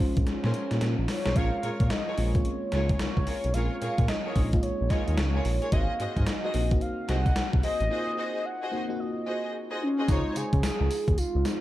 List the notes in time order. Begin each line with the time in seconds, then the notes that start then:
Already playing: C4 C#4 G#4
0.00 G#3 C#4 F4 C5
0.17 A#1, kick, closed hi-hat
0.27 C#4, snare, closed hi-hat
0.44 A#2 C#4 G#4 A#4 C5, snare
0.54 closed hi-hat
0.71 A#2, snare, closed hi-hat
0.81 A#2, snare, closed hi-hat
0.99 A#1
1.08 C#5, snare, open hi-hat
1.25 B1 C#4 G#4 A#4 C5, snare, closed hi-hat
1.35 A#1 G#3 C4 C#4 F4 G#4 A#4 C#5 F5, kick, closed hi-hat
1.63 A#2 F4 G#4 A#4 C#5, closed hi-hat
1.80 A#2, kick, closed hi-hat
1.90 D#5, snare, closed hi-hat
2.08 F4 G#4 A#4 C#5
2.17 A#1 G#3 C4 C#4 F4, open hi-hat
2.34 G#3 A#3 C#4 F4 C#5, kick, closed hi-hat
2.45 closed hi-hat
2.72 C#2 F4 G#4 A#4 C#5, snare, closed hi-hat
2.89 kick, closed hi-hat
2.99 C#2 C#5, snare, closed hi-hat
3.17 C#2, kick
3.26 F4 G#4 A#4 C#5, open hi-hat
3.44 B1, closed hi-hat
3.54 A#1 G#3 C4 C#4 F4 G#4 A#4 C#5 F5, closed hi-hat
3.81 A#2 F4 G#4 A#4 C#5, closed hi-hat
3.98 A#2, kick, closed hi-hat
4.08 D#5, snare, closed hi-hat
4.25 F4 G#4 A#4 C#5
4.35 A#1 G#3 C4 C#4 D#4, kick, open hi-hat
4.53 G#3 A#3 C#4 F4, kick, closed hi-hat
4.62 A#1 C#5, closed hi-hat
4.81 A#1
4.90 F4 G#4 A#4 C#5 D#5, kick, snare, closed hi-hat
5.08 D#2, closed hi-hat
5.17 C#2 C#5, snare, closed hi-hat
5.35 F4 G#4 A#4 C#5
5.45 A#1, open hi-hat
5.62 F4 G#4 A#4 C#5, closed hi-hat
5.72 G#1 A#3 C4 D#4 F#4 G#4 C5 D#5 F5, kick, closed hi-hat
5.99 G#2 F#4 G#4 C5 D#5, closed hi-hat
6.17 G#2, kick, closed hi-hat
6.22 F5
6.27 D#5, snare, closed hi-hat
6.44 F#4 G#4 C5 D#5
6.53 A#1 A#3 C4 D#4 F#4, open hi-hat
6.71 A#3 C4 D#4 F#4, kick, closed hi-hat
6.81 F5, closed hi-hat
7.08 C2 F#4 G#4 C5 D#5 F#5, snare, closed hi-hat
7.26 kick, closed hi-hat
7.36 C2, snare, closed hi-hat
7.53 C2, kick
7.63 F#4 G#4 C5 D#5, open hi-hat
7.80 A1, closed hi-hat
7.90 A#3 C4 D#4 F4 F#4 G#4 C5 D#5
8.18 F#4 G#4 C5 D#5
8.45 F#5
8.62 F#4 G#4 C5 D#5
8.72 A#3 C4 D#4 F#4
8.89 A#3 C4 D#4 F#4
9.00 D#5
9.26 F#4 G#4 C5 D#5
9.71 F#4 G#4 C5 D#5
9.82 C#4
9.98 F#4 G#4 C5 D#5
10.08 C#2 G#3 C4 D#4 F4 C5 C#5, kick, closed hi-hat, tambourine
10.36 C#3 G#4, closed hi-hat, tambourine
10.53 C#3, kick, closed hi-hat
10.63 C#2, snare, closed hi-hat, tambourine
10.81 C#2
10.91 open hi-hat, tambourine
11.08 D#2, kick, closed hi-hat
11.18 C#2 F4, closed hi-hat, tambourine
11.35 C#2
11.45 G#3 C4 D#4 F4, snare, closed hi-hat, tambourine